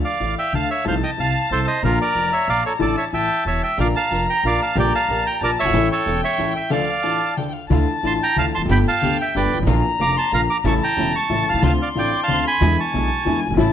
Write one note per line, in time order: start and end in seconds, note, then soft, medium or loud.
0.00 0.86 F5 medium
0.05 0.35 D5 medium
0.05 0.35 F5 medium
0.20 0.34 A1 soft
0.20 0.34 A2 soft
0.39 0.53 E5 soft
0.39 0.54 G5 medium
0.53 0.67 D2 medium
0.53 0.67 D2 soft
0.53 0.67 D3 soft
0.53 0.69 F5 medium
0.53 0.69 A5 medium
0.71 0.85 C#5 medium
0.71 0.85 E5 medium
0.84 0.99 C2 medium
0.84 0.99 C3 medium
0.84 0.99 F3 medium
0.84 0.99 A3 medium
0.84 0.99 D#4 medium
0.84 0.95 C5 medium
0.84 0.94 F5 medium
0.84 1.83 A5 medium
1.03 1.11 D#5 soft
1.03 1.10 G5 medium
1.17 1.31 C2 soft
1.17 1.32 C2 soft
1.17 1.32 C3 soft
1.17 1.49 F5 medium
1.17 1.49 A5 medium
1.51 1.64 C2 medium
1.51 1.64 C2 soft
1.51 1.64 C3 soft
1.51 1.66 A4 medium
1.51 1.66 C5 medium
1.67 1.82 C5 medium
1.67 1.82 D#5 medium
1.83 1.97 A#1 medium
1.83 1.97 A#2 medium
1.83 1.97 D3 medium
1.83 1.97 F3 medium
1.83 1.97 A#3 medium
1.83 1.97 F4 medium
1.83 1.99 F4 medium
1.83 1.99 A#4 medium
1.83 2.82 A#5 medium
2.01 2.31 A#4 medium
2.01 2.33 D5 medium
2.15 2.29 F1 soft
2.15 2.29 F2 medium
2.33 2.48 C#5 medium
2.33 2.49 E5 medium
2.47 2.61 A#1 soft
2.47 2.61 A#1 medium
2.47 2.61 A#2 soft
2.47 2.64 D5 medium
2.47 2.64 F5 medium
2.66 2.73 A4 medium
2.66 2.73 C#5 medium
2.79 2.94 A1 medium
2.79 2.93 A2 medium
2.79 2.93 D3 medium
2.79 2.93 E3 medium
2.79 2.93 A3 medium
2.79 2.94 E4 medium
2.79 2.96 A4 medium
2.79 2.96 D5 medium
2.79 3.12 A5 medium
2.97 3.05 C#5 soft
2.97 3.04 E5 medium
3.12 3.26 A1 soft
3.12 3.27 A1 soft
3.12 3.27 A2 soft
3.12 3.44 E5 medium
3.12 3.44 G5 medium
3.12 3.58 A5 medium
3.45 3.59 E1 soft
3.45 3.60 E2 soft
3.45 3.62 C#5 medium
3.45 3.62 E5 medium
3.63 3.78 E5 medium
3.63 3.79 G5 medium
3.78 3.92 A#1 medium
3.78 3.92 A#2 medium
3.78 3.92 D3 medium
3.78 3.92 F3 medium
3.78 3.92 A#3 medium
3.78 3.92 D4 medium
3.78 3.92 F4 medium
3.78 3.92 A#4 medium
3.78 3.88 D5 medium
3.78 3.87 F5 medium
3.78 4.73 A#5 medium
3.96 4.26 F5 medium
3.96 4.26 A5 medium
4.11 4.25 F1 soft
4.11 4.25 F2 soft
4.11 4.25 D4 soft
4.11 4.25 F4 soft
4.11 4.25 A#4 soft
4.29 4.44 G5 medium
4.29 4.44 A#5 medium
4.43 4.57 A#1 soft
4.43 4.58 A#1 soft
4.43 4.58 A#2 soft
4.43 4.57 D4 soft
4.43 4.58 F4 soft
4.43 4.58 A#4 soft
4.43 4.61 D5 medium
4.43 4.61 F5 medium
4.62 4.77 F5 medium
4.62 4.76 A5 medium
4.75 4.90 A#1 medium
4.75 4.90 A#2 medium
4.75 4.90 D3 medium
4.75 4.90 G3 medium
4.75 4.90 A#3 medium
4.75 4.90 D4 medium
4.75 4.90 G4 medium
4.75 4.90 A#4 medium
4.75 4.93 G5 medium
4.75 5.37 A#5 medium
4.80 4.93 D5 medium
4.95 5.24 F5 medium
4.95 5.27 A5 medium
5.09 5.22 A#1 soft
5.09 5.23 A#1 soft
5.09 5.23 A#2 soft
5.09 5.22 D4 soft
5.09 5.22 G4 soft
5.09 5.23 A#4 medium
5.26 5.41 G5 medium
5.26 5.42 A#5 medium
5.41 5.55 A#1 medium
5.41 5.55 A#1 soft
5.41 5.55 A#2 medium
5.41 5.55 D4 soft
5.41 5.55 G4 soft
5.41 5.55 A#4 soft
5.41 5.51 A#4 medium
5.41 5.50 D5 medium
5.41 5.68 A5 medium
5.59 5.65 F#1 soft
5.59 5.66 F#1 soft
5.59 5.89 C#5 medium
5.59 5.89 E5 medium
5.66 5.70 G1 medium
5.66 5.69 G1 medium
5.66 5.74 G#1 medium
5.66 5.75 F#5 medium
5.70 5.73 G#1 medium
5.70 5.87 A1 medium
5.70 5.87 A2 medium
5.70 5.87 E3 medium
5.70 5.87 A3 medium
5.70 5.87 C#4 medium
5.70 5.87 E4 medium
5.70 5.87 A4 medium
5.70 6.72 G5 medium
5.92 6.21 A4 medium
5.92 6.21 C#5 medium
6.06 6.20 E1 medium
6.06 6.20 E1 soft
6.06 6.20 E2 soft
6.06 6.19 C#4 soft
6.06 6.19 E4 soft
6.06 6.19 A4 medium
6.24 6.54 C#5 medium
6.24 6.53 E5 medium
6.38 6.52 A1 soft
6.38 6.52 A1 medium
6.38 6.52 A2 soft
6.38 6.52 C#4 soft
6.38 6.52 E4 soft
6.38 6.52 A4 soft
6.56 6.71 E5 medium
6.56 6.70 G5 medium
6.70 6.84 D2 medium
6.70 6.84 D3 medium
6.70 6.84 F3 medium
6.70 6.84 A3 medium
6.70 6.84 D4 medium
6.70 6.84 F4 medium
6.70 6.84 A4 medium
6.70 6.85 A4 medium
6.70 7.34 D5 medium
6.70 7.04 F5 medium
6.70 7.34 F5 medium
7.03 7.18 A1 soft
7.03 7.18 A2 soft
7.03 7.17 D4 soft
7.03 7.18 F4 soft
7.03 7.17 A4 soft
7.03 7.38 A5 medium
7.36 7.51 D2 soft
7.36 7.51 D3 soft
7.36 7.51 D4 soft
7.36 7.51 F4 soft
7.36 7.51 A4 soft
7.36 7.48 G5 medium
7.49 7.68 F5 medium
7.49 7.54 G5 soft
7.69 7.84 D2 medium
7.69 7.84 D3 medium
7.69 7.84 E3 medium
7.69 7.84 A3 medium
7.69 7.84 D4 medium
7.69 7.84 E4 medium
7.69 7.84 F4 medium
7.69 8.64 A5 medium
8.03 8.17 A1 soft
8.03 8.17 A2 soft
8.03 8.17 E3 soft
8.03 8.17 A3 soft
8.03 8.17 D4 soft
8.03 8.17 E4 soft
8.03 8.17 F4 soft
8.03 8.13 A5 medium
8.03 8.14 C6 medium
8.23 8.37 G5 medium
8.23 8.37 A#5 medium
8.36 8.50 D2 medium
8.36 8.50 D2 soft
8.36 8.50 D3 medium
8.36 8.50 E3 soft
8.36 8.50 A3 soft
8.36 8.50 D4 soft
8.36 8.50 E4 soft
8.36 8.50 F4 medium
8.36 8.51 F4 soft
8.36 8.45 F5 medium
8.36 8.46 A5 medium
8.55 8.61 E1 soft
8.55 8.61 E2 soft
8.55 8.62 A5 medium
8.55 8.62 C6 medium
8.61 8.65 F1 medium
8.61 8.65 F2 medium
8.61 8.69 F#2 medium
8.65 8.69 F#1 medium
8.65 8.83 G1 medium
8.65 8.83 G2 medium
8.65 8.83 D3 medium
8.65 8.83 A3 medium
8.65 8.83 B3 medium
8.65 9.63 G5 medium
8.69 8.83 G4 medium
8.69 8.79 G5 medium
8.69 8.78 B5 medium
8.88 9.17 F5 medium
8.88 9.17 A5 medium
9.01 9.16 D2 medium
9.01 9.16 D3 medium
9.01 9.16 A3 soft
9.01 9.16 B3 soft
9.01 9.16 G4 medium
9.01 9.16 G4 soft
9.21 9.35 E5 medium
9.21 9.35 G5 medium
9.35 9.48 G1 medium
9.35 9.49 G1 medium
9.35 9.48 G2 medium
9.35 9.48 D3 soft
9.35 9.48 A3 soft
9.35 9.48 B3 soft
9.35 9.48 G4 medium
9.35 9.49 G4 soft
9.35 9.58 B4 medium
9.35 9.58 D5 medium
9.54 9.59 G1 soft
9.54 9.58 G1 soft
9.59 9.62 G#1 medium
9.59 9.63 G#1 medium
9.59 9.67 A1 medium
9.59 9.66 A1 medium
9.67 9.80 A#1 loud
9.67 9.81 A#1 medium
9.67 9.81 A#2 medium
9.67 9.80 D3 medium
9.67 9.81 F3 medium
9.67 9.81 A#3 medium
9.67 9.81 D4 medium
9.67 9.81 F4 medium
9.67 10.66 A#5 medium
9.99 10.13 F1 medium
9.99 10.13 F1 soft
9.99 10.13 F2 soft
9.99 10.13 D3 soft
9.99 10.13 F3 soft
9.99 10.13 A#3 soft
9.99 10.13 D4 soft
9.99 10.13 F4 medium
9.99 10.14 F4 soft
9.99 10.16 A#5 medium
9.99 10.16 D6 medium
10.17 10.32 A5 medium
10.17 10.32 C6 medium
10.32 10.46 A#1 medium
10.32 10.46 A#2 medium
10.32 10.46 D3 soft
10.32 10.46 F3 soft
10.32 10.46 A#3 soft
10.32 10.46 D4 soft
10.32 10.46 F4 medium
10.32 10.41 F5 medium
10.32 10.41 A#5 medium
10.50 10.58 A#5 medium
10.50 10.57 D6 medium
10.64 10.78 A1 medium
10.64 10.79 A1 medium
10.64 10.78 A2 medium
10.64 10.78 C#3 medium
10.64 10.78 E3 medium
10.64 10.78 A3 medium
10.64 10.79 A3 medium
10.64 10.78 C#4 medium
10.64 10.78 E4 medium
10.64 10.79 E4 medium
10.64 11.30 A5 medium
10.64 10.74 A5 medium
10.64 10.74 C#6 medium
10.83 11.13 G5 medium
10.83 11.16 A#5 medium
10.97 11.11 E1 soft
10.97 11.11 E1 medium
10.97 11.11 E2 medium
10.97 11.11 C#3 soft
10.97 11.11 E3 soft
10.97 11.11 A3 soft
10.97 11.11 C#4 soft
10.97 11.11 E4 soft
10.97 11.11 E4 medium
11.16 11.46 A5 medium
11.16 11.48 C#6 medium
11.29 11.44 A1 soft
11.29 11.44 A1 medium
11.29 11.43 A2 medium
11.29 11.43 C#3 soft
11.29 11.43 E3 soft
11.29 11.43 A3 soft
11.29 11.44 A3 soft
11.29 11.44 C#4 soft
11.29 11.44 E4 soft
11.29 11.65 A5 medium
11.49 11.53 B1 soft
11.49 11.54 B1 soft
11.49 11.63 F5 medium
11.49 11.64 A5 medium
11.54 11.57 C2 medium
11.54 11.58 C2 medium
11.54 11.62 C#2 medium
11.58 11.62 C#2 medium
11.58 11.76 D3 medium
11.62 11.76 D2 medium
11.62 11.77 D2 medium
11.62 11.76 A3 medium
11.62 11.76 C4 medium
11.62 11.77 D4 medium
11.62 11.77 F4 medium
11.62 11.72 F5 medium
11.62 11.72 A5 medium
11.62 12.64 C6 medium
11.82 11.89 D5 soft
11.82 11.89 F5 medium
11.95 12.09 A1 soft
11.95 12.10 A1 soft
11.95 12.09 A2 medium
11.95 12.09 D3 soft
11.95 12.09 A3 soft
11.95 12.09 C4 soft
11.95 12.10 C4 soft
11.95 12.10 D4 soft
11.95 12.10 F4 medium
11.95 12.10 F4 soft
11.95 12.23 G5 medium
11.99 12.21 D5 medium
12.23 12.45 F5 medium
12.23 12.45 A5 medium
12.28 12.42 D2 soft
12.28 12.43 D2 medium
12.28 12.42 D3 medium
12.28 12.42 A3 soft
12.28 12.42 C4 soft
12.28 12.42 D4 soft
12.28 12.42 F4 medium
12.28 12.43 F4 medium
12.47 12.77 G#5 medium
12.47 12.80 B5 medium
12.61 12.75 E2 medium
12.61 12.75 D3 medium
12.61 12.75 E3 medium
12.61 12.75 G#3 medium
12.61 12.75 B3 medium
12.61 12.75 D4 medium
12.61 12.75 E4 medium
12.61 13.26 G#5 medium
12.80 13.40 A5 medium
12.80 13.40 C#6 medium
12.93 13.07 B1 soft
12.93 13.08 B1 medium
12.93 13.07 B2 medium
12.93 13.07 D3 soft
12.93 13.07 G#3 soft
12.93 13.08 G#3 medium
12.93 13.07 B3 soft
12.93 13.08 D4 soft
12.93 13.07 E4 soft
12.93 13.08 E4 medium
13.25 13.40 E2 medium
13.25 13.39 D3 soft
13.25 13.40 E3 medium
13.25 13.40 G#3 soft
13.25 13.40 G#3 medium
13.25 13.39 B3 soft
13.25 13.40 D4 soft
13.25 13.40 E4 medium
13.25 13.40 E4 soft
13.25 13.57 G#5 medium
13.46 13.50 F#1 soft
13.46 13.50 F#1 medium
13.46 13.54 G1 medium
13.50 13.54 G1 medium
13.50 13.58 G#1 medium
13.55 13.58 G#1 medium
13.55 13.71 A1 medium
13.55 13.72 A2 medium
13.55 13.71 C#3 medium
13.55 13.71 E3 medium
13.55 13.72 A3 medium
13.55 13.72 E4 medium
13.59 13.72 A1 medium
13.59 13.73 A3 medium
13.59 13.73 C#4 medium
13.59 13.73 E4 medium
13.59 13.73 A5 loud